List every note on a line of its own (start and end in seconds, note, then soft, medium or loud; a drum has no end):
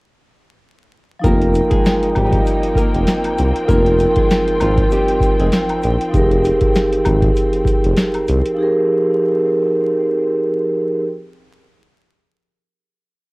1.19 3.63 F3 medium
1.19 3.64 D#4 medium
1.23 1.61 F1 loud
1.23 10.99 F3 medium
1.23 6.10 A#3 medium
1.23 1.69 A#3 medium
1.23 10.99 C4 medium
1.23 3.66 D#4 medium
1.23 3.66 F4 medium
1.23 1.69 A#4 loud
1.23 3.65 G5 medium
1.23 8.55 G5 loud
1.23 kick loud
1.23 closed hi-hat medium
1.23 shaker medium
1.28 3.67 A#4 medium
1.42 closed hi-hat soft
1.54 closed hi-hat medium
1.54 shaker soft
1.70 2.13 G#3 medium
1.70 2.12 G#4 medium
1.70 kick loud
1.70 closed hi-hat medium
1.85 snare loud
1.85 snare medium
1.85 closed hi-hat loud
1.85 shaker medium
2.03 closed hi-hat medium
2.15 2.40 G#1 loud
2.15 2.74 G3 medium
2.15 2.74 G4 medium
2.15 kick medium
2.15 closed hi-hat medium
2.15 high woodblock medium
2.15 shaker soft
2.32 kick loud
2.32 closed hi-hat medium
2.46 closed hi-hat medium
2.46 shaker medium
2.63 closed hi-hat medium
2.75 3.05 A#3 medium
2.75 3.04 A#4 medium
2.75 kick medium
2.75 closed hi-hat medium
2.75 shaker medium
2.94 3.05 F1 loud
2.94 closed hi-hat medium
3.07 snare loud
3.07 closed hi-hat loud
3.07 shaker medium
3.24 closed hi-hat medium
3.24 high woodblock soft
3.38 3.52 C2 medium
3.38 closed hi-hat medium
3.38 shaker soft
3.56 closed hi-hat medium
3.65 6.08 F3 medium
3.65 6.09 D#4 medium
3.65 4.13 A#4 loud
3.69 4.06 F1 loud
3.69 4.14 A#3 medium
3.69 6.12 F4 medium
3.69 6.11 F4 medium
3.69 6.12 A#4 medium
3.69 6.10 G5 medium
3.69 kick loud
3.69 closed hi-hat medium
3.69 shaker medium
3.86 closed hi-hat medium
3.99 closed hi-hat medium
3.99 shaker soft
4.16 4.59 G#3 medium
4.16 4.58 G#4 medium
4.16 kick medium
4.16 closed hi-hat medium
4.30 snare loud
4.30 snare medium
4.30 closed hi-hat loud
4.30 shaker medium
4.48 closed hi-hat medium
4.60 4.85 G#1 loud
4.60 4.89 F3 medium
4.60 4.89 F4 medium
4.60 closed hi-hat medium
4.60 high woodblock medium
4.60 shaker soft
4.77 kick loud
4.77 closed hi-hat medium
4.91 5.37 G3 medium
4.91 5.36 G4 medium
4.91 closed hi-hat medium
4.91 shaker medium
5.08 closed hi-hat medium
5.20 kick loud
5.20 closed hi-hat medium
5.20 shaker medium
5.39 5.50 F1 medium
5.39 5.52 G#3 medium
5.39 5.51 G#4 medium
5.39 closed hi-hat medium
5.52 snare loud
5.52 closed hi-hat loud
5.52 shaker medium
5.69 closed hi-hat medium
5.69 high woodblock medium
5.83 5.97 A#1 medium
5.83 closed hi-hat medium
5.83 shaker medium
6.01 closed hi-hat medium
6.09 8.52 F3 medium
6.09 8.53 D#4 medium
6.13 6.51 F1 loud
6.13 8.54 G4 medium
6.13 8.55 G#4 medium
6.13 kick loud
6.13 closed hi-hat medium
6.13 shaker medium
6.17 8.56 A#4 medium
6.31 closed hi-hat soft
6.44 closed hi-hat medium
6.44 shaker soft
6.61 kick loud
6.61 closed hi-hat medium
6.75 snare loud
6.75 snare medium
6.75 closed hi-hat medium
6.75 shaker medium
6.93 closed hi-hat medium
7.05 7.30 G#1 loud
7.05 kick medium
7.05 closed hi-hat medium
7.05 high woodblock medium
7.05 shaker soft
7.22 kick loud
7.22 closed hi-hat soft
7.36 closed hi-hat medium
7.36 shaker medium
7.53 closed hi-hat medium
7.65 kick medium
7.65 closed hi-hat medium
7.65 shaker medium
7.84 7.95 F1 medium
7.84 closed hi-hat medium
7.97 snare loud
7.97 closed hi-hat loud
7.97 shaker medium
8.14 closed hi-hat medium
8.14 high woodblock medium
8.27 8.42 C2 medium
8.27 closed hi-hat medium
8.27 shaker soft
8.46 closed hi-hat medium
8.54 10.97 F3 medium
8.54 10.98 D#4 medium
8.59 10.99 G4 medium
8.59 11.00 G#4 medium
8.63 11.01 A#4 medium